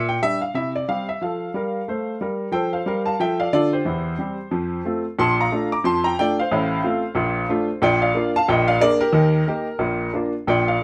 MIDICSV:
0, 0, Header, 1, 2, 480
1, 0, Start_track
1, 0, Key_signature, -1, "major"
1, 0, Tempo, 331126
1, 1742, Time_signature, 4, 2, 24, 8
1, 11346, Key_signature, -2, "major"
1, 15706, End_track
2, 0, Start_track
2, 0, Title_t, "Grand piano"
2, 0, Program_c, 0, 0
2, 0, Note_on_c, 0, 46, 84
2, 126, Note_on_c, 0, 79, 94
2, 236, Note_off_c, 0, 46, 0
2, 282, Note_off_c, 0, 79, 0
2, 323, Note_on_c, 0, 62, 46
2, 324, Note_on_c, 0, 55, 45
2, 328, Note_on_c, 0, 67, 48
2, 329, Note_on_c, 0, 76, 101
2, 561, Note_off_c, 0, 76, 0
2, 581, Note_off_c, 0, 62, 0
2, 582, Note_off_c, 0, 55, 0
2, 585, Note_off_c, 0, 67, 0
2, 600, Note_on_c, 0, 77, 71
2, 759, Note_off_c, 0, 77, 0
2, 787, Note_on_c, 0, 48, 77
2, 800, Note_on_c, 0, 76, 82
2, 822, Note_on_c, 0, 64, 44
2, 1036, Note_off_c, 0, 76, 0
2, 1075, Note_off_c, 0, 64, 0
2, 1095, Note_on_c, 0, 74, 75
2, 1193, Note_off_c, 0, 48, 0
2, 1248, Note_off_c, 0, 74, 0
2, 1279, Note_on_c, 0, 60, 48
2, 1280, Note_on_c, 0, 55, 50
2, 1285, Note_on_c, 0, 77, 87
2, 1290, Note_on_c, 0, 67, 47
2, 1520, Note_off_c, 0, 77, 0
2, 1539, Note_off_c, 0, 55, 0
2, 1539, Note_off_c, 0, 60, 0
2, 1546, Note_off_c, 0, 67, 0
2, 1576, Note_on_c, 0, 76, 70
2, 1729, Note_off_c, 0, 76, 0
2, 1760, Note_on_c, 0, 53, 50
2, 1774, Note_on_c, 0, 77, 63
2, 1798, Note_on_c, 0, 69, 55
2, 2138, Note_off_c, 0, 53, 0
2, 2160, Note_off_c, 0, 69, 0
2, 2233, Note_on_c, 0, 55, 62
2, 2260, Note_on_c, 0, 70, 65
2, 2614, Note_off_c, 0, 55, 0
2, 2630, Note_off_c, 0, 70, 0
2, 2726, Note_on_c, 0, 57, 53
2, 2740, Note_on_c, 0, 72, 57
2, 3102, Note_off_c, 0, 57, 0
2, 3110, Note_off_c, 0, 72, 0
2, 3200, Note_on_c, 0, 55, 58
2, 3219, Note_on_c, 0, 70, 58
2, 3231, Note_off_c, 0, 77, 0
2, 3579, Note_off_c, 0, 55, 0
2, 3590, Note_off_c, 0, 70, 0
2, 3648, Note_on_c, 0, 53, 62
2, 3660, Note_on_c, 0, 79, 85
2, 3666, Note_on_c, 0, 69, 69
2, 3679, Note_on_c, 0, 72, 66
2, 3907, Note_off_c, 0, 79, 0
2, 3941, Note_off_c, 0, 72, 0
2, 3957, Note_on_c, 0, 77, 65
2, 3973, Note_on_c, 0, 72, 50
2, 4039, Note_off_c, 0, 53, 0
2, 4050, Note_off_c, 0, 69, 0
2, 4146, Note_on_c, 0, 55, 69
2, 4170, Note_on_c, 0, 70, 76
2, 4364, Note_off_c, 0, 77, 0
2, 4411, Note_off_c, 0, 72, 0
2, 4430, Note_on_c, 0, 81, 75
2, 4448, Note_on_c, 0, 77, 57
2, 4531, Note_off_c, 0, 55, 0
2, 4545, Note_off_c, 0, 70, 0
2, 4596, Note_off_c, 0, 81, 0
2, 4621, Note_off_c, 0, 77, 0
2, 4633, Note_on_c, 0, 53, 68
2, 4646, Note_on_c, 0, 79, 88
2, 4654, Note_on_c, 0, 76, 66
2, 4662, Note_on_c, 0, 69, 63
2, 4882, Note_off_c, 0, 79, 0
2, 4909, Note_off_c, 0, 76, 0
2, 4923, Note_on_c, 0, 77, 85
2, 4936, Note_on_c, 0, 74, 65
2, 5015, Note_off_c, 0, 53, 0
2, 5032, Note_off_c, 0, 69, 0
2, 5083, Note_off_c, 0, 77, 0
2, 5097, Note_off_c, 0, 74, 0
2, 5116, Note_on_c, 0, 50, 75
2, 5118, Note_on_c, 0, 74, 106
2, 5131, Note_on_c, 0, 65, 76
2, 5138, Note_on_c, 0, 69, 68
2, 5358, Note_off_c, 0, 74, 0
2, 5391, Note_off_c, 0, 69, 0
2, 5406, Note_on_c, 0, 72, 69
2, 5418, Note_on_c, 0, 67, 48
2, 5497, Note_off_c, 0, 50, 0
2, 5506, Note_off_c, 0, 65, 0
2, 5581, Note_on_c, 0, 52, 63
2, 5591, Note_on_c, 0, 40, 65
2, 5992, Note_off_c, 0, 52, 0
2, 5998, Note_off_c, 0, 40, 0
2, 6060, Note_off_c, 0, 67, 0
2, 6064, Note_on_c, 0, 60, 46
2, 6068, Note_on_c, 0, 55, 55
2, 6081, Note_on_c, 0, 67, 49
2, 6329, Note_off_c, 0, 60, 0
2, 6332, Note_off_c, 0, 55, 0
2, 6342, Note_off_c, 0, 67, 0
2, 6539, Note_on_c, 0, 41, 69
2, 6543, Note_on_c, 0, 53, 70
2, 6951, Note_off_c, 0, 41, 0
2, 6953, Note_off_c, 0, 53, 0
2, 7031, Note_on_c, 0, 57, 56
2, 7040, Note_on_c, 0, 60, 46
2, 7046, Note_on_c, 0, 65, 56
2, 7198, Note_off_c, 0, 72, 0
2, 7294, Note_off_c, 0, 57, 0
2, 7301, Note_off_c, 0, 60, 0
2, 7305, Note_off_c, 0, 65, 0
2, 7517, Note_on_c, 0, 46, 86
2, 7520, Note_on_c, 0, 34, 70
2, 7528, Note_on_c, 0, 84, 96
2, 7545, Note_on_c, 0, 81, 80
2, 7763, Note_off_c, 0, 84, 0
2, 7795, Note_off_c, 0, 81, 0
2, 7835, Note_on_c, 0, 82, 83
2, 7842, Note_on_c, 0, 77, 60
2, 7921, Note_off_c, 0, 46, 0
2, 7923, Note_off_c, 0, 34, 0
2, 7997, Note_on_c, 0, 57, 55
2, 8000, Note_on_c, 0, 62, 51
2, 8008, Note_on_c, 0, 65, 56
2, 8226, Note_off_c, 0, 82, 0
2, 8259, Note_off_c, 0, 57, 0
2, 8261, Note_off_c, 0, 62, 0
2, 8266, Note_off_c, 0, 65, 0
2, 8267, Note_off_c, 0, 77, 0
2, 8296, Note_on_c, 0, 86, 90
2, 8307, Note_on_c, 0, 82, 59
2, 8451, Note_off_c, 0, 86, 0
2, 8467, Note_on_c, 0, 53, 77
2, 8468, Note_on_c, 0, 41, 76
2, 8472, Note_off_c, 0, 82, 0
2, 8482, Note_on_c, 0, 84, 100
2, 8493, Note_on_c, 0, 81, 72
2, 8720, Note_off_c, 0, 84, 0
2, 8748, Note_off_c, 0, 81, 0
2, 8759, Note_on_c, 0, 82, 100
2, 8785, Note_on_c, 0, 79, 75
2, 8875, Note_off_c, 0, 53, 0
2, 8876, Note_off_c, 0, 41, 0
2, 8921, Note_off_c, 0, 82, 0
2, 8951, Note_off_c, 0, 79, 0
2, 8974, Note_on_c, 0, 62, 54
2, 8975, Note_on_c, 0, 79, 110
2, 8976, Note_on_c, 0, 57, 55
2, 8981, Note_on_c, 0, 65, 59
2, 9001, Note_on_c, 0, 74, 85
2, 9207, Note_off_c, 0, 79, 0
2, 9231, Note_off_c, 0, 62, 0
2, 9232, Note_off_c, 0, 57, 0
2, 9236, Note_off_c, 0, 65, 0
2, 9243, Note_off_c, 0, 74, 0
2, 9270, Note_on_c, 0, 77, 83
2, 9293, Note_on_c, 0, 72, 65
2, 9445, Note_on_c, 0, 33, 83
2, 9448, Note_on_c, 0, 45, 87
2, 9845, Note_off_c, 0, 33, 0
2, 9847, Note_off_c, 0, 45, 0
2, 9905, Note_on_c, 0, 60, 58
2, 9914, Note_on_c, 0, 57, 54
2, 9914, Note_on_c, 0, 65, 59
2, 10170, Note_off_c, 0, 60, 0
2, 10176, Note_off_c, 0, 57, 0
2, 10176, Note_off_c, 0, 65, 0
2, 10362, Note_on_c, 0, 46, 83
2, 10371, Note_on_c, 0, 34, 82
2, 10780, Note_off_c, 0, 46, 0
2, 10786, Note_off_c, 0, 34, 0
2, 10858, Note_on_c, 0, 62, 57
2, 10860, Note_on_c, 0, 57, 61
2, 10871, Note_on_c, 0, 65, 69
2, 11050, Note_off_c, 0, 77, 0
2, 11124, Note_off_c, 0, 62, 0
2, 11126, Note_off_c, 0, 57, 0
2, 11134, Note_off_c, 0, 65, 0
2, 11317, Note_off_c, 0, 72, 0
2, 11333, Note_on_c, 0, 46, 90
2, 11342, Note_on_c, 0, 34, 82
2, 11346, Note_on_c, 0, 79, 103
2, 11360, Note_on_c, 0, 74, 93
2, 11590, Note_off_c, 0, 79, 0
2, 11616, Note_off_c, 0, 74, 0
2, 11622, Note_on_c, 0, 77, 87
2, 11638, Note_on_c, 0, 74, 69
2, 11746, Note_off_c, 0, 46, 0
2, 11751, Note_off_c, 0, 34, 0
2, 11809, Note_on_c, 0, 58, 54
2, 11817, Note_on_c, 0, 62, 52
2, 11823, Note_on_c, 0, 65, 59
2, 12034, Note_off_c, 0, 77, 0
2, 12077, Note_off_c, 0, 58, 0
2, 12082, Note_off_c, 0, 74, 0
2, 12083, Note_off_c, 0, 62, 0
2, 12087, Note_off_c, 0, 65, 0
2, 12119, Note_on_c, 0, 81, 103
2, 12141, Note_on_c, 0, 77, 81
2, 12280, Note_off_c, 0, 81, 0
2, 12298, Note_on_c, 0, 46, 90
2, 12302, Note_on_c, 0, 34, 89
2, 12307, Note_off_c, 0, 77, 0
2, 12309, Note_on_c, 0, 79, 90
2, 12333, Note_on_c, 0, 75, 69
2, 12551, Note_off_c, 0, 79, 0
2, 12579, Note_on_c, 0, 77, 100
2, 12587, Note_off_c, 0, 75, 0
2, 12594, Note_on_c, 0, 74, 83
2, 12709, Note_off_c, 0, 46, 0
2, 12711, Note_off_c, 0, 34, 0
2, 12748, Note_off_c, 0, 77, 0
2, 12755, Note_off_c, 0, 74, 0
2, 12765, Note_on_c, 0, 58, 66
2, 12773, Note_on_c, 0, 62, 65
2, 12776, Note_on_c, 0, 74, 122
2, 12782, Note_on_c, 0, 68, 58
2, 12797, Note_on_c, 0, 70, 90
2, 13024, Note_off_c, 0, 74, 0
2, 13033, Note_off_c, 0, 70, 0
2, 13034, Note_off_c, 0, 58, 0
2, 13040, Note_off_c, 0, 62, 0
2, 13047, Note_off_c, 0, 68, 0
2, 13055, Note_on_c, 0, 70, 103
2, 13068, Note_on_c, 0, 67, 75
2, 13227, Note_on_c, 0, 51, 84
2, 13232, Note_on_c, 0, 39, 84
2, 13651, Note_off_c, 0, 51, 0
2, 13653, Note_off_c, 0, 39, 0
2, 13721, Note_off_c, 0, 67, 0
2, 13735, Note_on_c, 0, 58, 54
2, 13742, Note_on_c, 0, 63, 61
2, 13743, Note_on_c, 0, 67, 71
2, 14001, Note_off_c, 0, 58, 0
2, 14006, Note_off_c, 0, 63, 0
2, 14007, Note_off_c, 0, 67, 0
2, 14191, Note_on_c, 0, 34, 74
2, 14192, Note_on_c, 0, 46, 76
2, 14612, Note_off_c, 0, 34, 0
2, 14613, Note_off_c, 0, 46, 0
2, 14691, Note_on_c, 0, 62, 58
2, 14695, Note_on_c, 0, 58, 60
2, 14710, Note_on_c, 0, 65, 57
2, 14856, Note_off_c, 0, 70, 0
2, 14958, Note_off_c, 0, 62, 0
2, 14961, Note_off_c, 0, 58, 0
2, 14972, Note_off_c, 0, 65, 0
2, 15183, Note_on_c, 0, 34, 74
2, 15188, Note_on_c, 0, 46, 89
2, 15193, Note_on_c, 0, 79, 91
2, 15217, Note_on_c, 0, 74, 82
2, 15432, Note_off_c, 0, 79, 0
2, 15468, Note_off_c, 0, 74, 0
2, 15482, Note_on_c, 0, 77, 81
2, 15504, Note_on_c, 0, 74, 53
2, 15590, Note_off_c, 0, 34, 0
2, 15593, Note_off_c, 0, 46, 0
2, 15706, Note_off_c, 0, 74, 0
2, 15706, Note_off_c, 0, 77, 0
2, 15706, End_track
0, 0, End_of_file